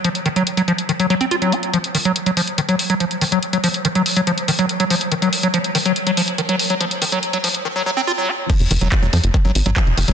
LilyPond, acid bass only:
\new Staff \with { instrumentName = "Acid bass" } { \clef bass \time 4/4 \key f \phrygian \tempo 4 = 142 f16 r16 ees16 ges16 r16 ges16 f16 r16 ees16 ges16 ges16 c'16 f'16 ges16 f'16 r16 | f16 r16 ees16 ges16 r16 ges16 f16 r16 ees16 ges16 r16 ges16 f16 r16 ees16 ges16 | r16 ges16 f16 r16 ees16 ges16 r16 ges16 f16 r16 ees16 ges16 r16 ges16 f16 r16 | ees16 ges16 r16 ges16 f16 r16 ees16 ges16 r16 ges16 f16 r16 ees16 ges16 r16 ges16 |
f16 r16 ees16 ges16 r16 ges16 f16 r16 ees16 ges16 ges16 c'16 f'16 ges16 f'16 r16 | f16 r16 ees16 ges16 r16 ges16 f16 r16 ees16 ges16 r16 ges16 f16 r16 ees16 ges16 | }